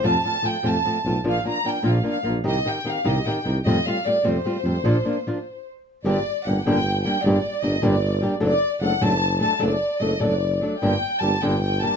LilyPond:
<<
  \new Staff \with { instrumentName = "Violin section" } { \time 6/8 \key bes \major \tempo 4. = 100 a''8 a''8 g''8 a''4 r8 | f''8 bes''8 g''8 f''8 f''8 r8 | ees''8 g''8 f''8 ees''8 g''8 r8 | ees''8 f''8 d''8 c''4.~ |
c''2 r4 | \key g \minor d''4 fis''8 g''4 g''8 | d''4 ees''8 d''4 r8 | d''4 fis''8 a''4 a''8 |
d''4 ees''8 d''4 r8 | g''4 a''8 g''8 g''8 a''8 | }
  \new Staff \with { instrumentName = "Nylon-string guitar" } { \time 6/8 \key bes \major <f, c f a c' f'>8 <f a c' f'>8 <f a c' f'>8 <f, c f a c' f'>8 <f a c' f'>8 <f a c' f'>8 | <bes, f bes d' f'>8 <f bes d' f'>8 <f bes d' f'>8 <bes, f bes d' f'>8 <f bes d' f'>8 <f bes d' f'>8 | <c ees c' ees' g'>8 <ees c' ees' g'>8 <ees c' ees' g'>8 <c ees c' ees' g'>8 <ees c' ees' g'>8 <ees c' ees' g'>8 | <f, c g a c' f'>8 <g a c' f'>8 <g a c' f'>8 <f, c g a c' f'>8 <g a c' f'>8 <g a c' f'>8 |
<bes, f bes d' f'>8 <f bes d' f'>8 <f bes d' f'>8 r4. | \key g \minor <g, d g bes d' g'>8 r8 <g bes d' g'>8 <g, d g bes d' g'>8 r8 <g bes d' g'>8 | <g, d g bes d' g'>8 r8 <g bes d' g'>8 <g, d g bes d' g'>8 r8 <g bes d' g'>8 | <fis a d' a'>8 r8 <fis a d' a'>8 <fis a d' a'>8 r8 <fis a d' a'>8 |
<fis a d' a'>8 r8 <fis a d' a'>8 <fis a d' a'>8 r8 <fis a d' a'>8 | <g, d g bes d' g'>8 r8 <g bes d' g'>8 <g, d g bes d' g'>8 r8 <g bes d' g'>8 | }
  \new Staff \with { instrumentName = "Tuba" } { \clef bass \time 6/8 \key bes \major f,8 r4 f,8 r8 ces,8 | bes,,8 r4 bes,,8 r8 bes,,8 | c,8 r4 c,8 r8 c,8 | f,8 r4 f,8 r8 f,8 |
bes,,8 r2 r8 | \key g \minor g,,8 r8 g,,8 g,,4. | g,,8 r8 g,,8 g,,4. | fis,,8 r8 fis,,8 fis,,4. |
fis,,8 r8 fis,,8 fis,,4. | g,,8 r8 g,,8 g,,4. | }
>>